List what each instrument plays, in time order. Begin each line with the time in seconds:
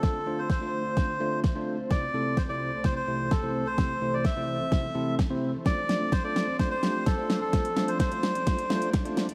Already playing: ambient pad D3 A3 C4 F4 C5, melodica A4
0.03 tine electric piano A3 D4 F4 A4, kick, snare
0.26 tine electric piano A3 D4 F4 C5
0.38 melodica C5
0.50 melodica C5, kick, snare
0.61 tine electric piano A3 D4 F4 C5
0.97 tine electric piano A3 D4 F4 C5, kick, snare
1.20 tine electric piano A3 D4 F4 C5
1.44 kick, snare
1.55 tine electric piano A3 D4 F4 C5
1.90 ambient pad C2 E3 A3 A4, tine electric piano C3 A3 C4 E4 C5, melodica D5, kick, snare
2.14 tine electric piano C3 A3 C4 E4 A4
2.37 melodica C5, kick, snare
2.49 tine electric piano C3 A3 C4 E4 C5, melodica D5
2.84 tine electric piano C3 A3 C4 E4 C5, melodica C5, kick, snare
2.96 melodica C5
3.07 tine electric piano C3 A3 C4 E4 C5
3.31 melodica A4, kick, snare
3.43 tine electric piano C3 A3 C4 E4 C5
3.66 melodica C5
3.77 tine electric piano C3 A3 C4 E4 G4, kick, snare
4.01 tine electric piano C3 A3 C4 E4 C5
4.13 melodica D5
4.25 melodica E5, kick, snare
4.36 tine electric piano C3 A3 C4 E4 C5
4.71 tine electric piano C3 A3 C4 E4 C5, kick, snare
4.95 tine electric piano C3 A3 C4 E4 A4
5.19 kick, snare
5.30 tine electric piano C3 A3 C4 E4 C5
5.65 ambient pad F3 D4 A4 C5, tine electric piano A3 D4 F4 C5, melodica D5, kick, snare
5.89 tine electric piano A3 D4 F4 D5, snare
6.12 melodica C5, kick, snare
6.24 tine electric piano A3 D4 F4 A4, melodica D5
6.36 snare
6.59 tine electric piano A3 D4 F4 C5, melodica C5, kick, snare
6.71 melodica C5
6.83 tine electric piano A3 D4 F4 G4, snare
7.06 melodica A4, kick, snare
7.17 tine electric piano A3 D4 F4 C5
7.30 snare
7.41 melodica A4
7.53 tine electric piano A3 D4 F4 C5, ambient pad D5, kick, snare, closed hi-hat
7.65 closed hi-hat
7.76 tine electric piano A3 D4 F4 C5, snare
7.88 melodica C5, closed hi-hat
8.00 melodica C5, kick, snare, closed hi-hat
8.12 tine electric piano A3 D4 F4 C5, closed hi-hat
8.23 snare
8.35 closed hi-hat
8.46 tine electric piano A3 D4 F4 C5, kick, snare, closed hi-hat
8.59 closed hi-hat
8.70 tine electric piano A3 D4 F4 C5, snare
8.82 closed hi-hat
8.93 kick, snare, closed hi-hat
9.05 tine electric piano A3 D4 F4 C5, closed hi-hat
9.17 snare
9.29 closed hi-hat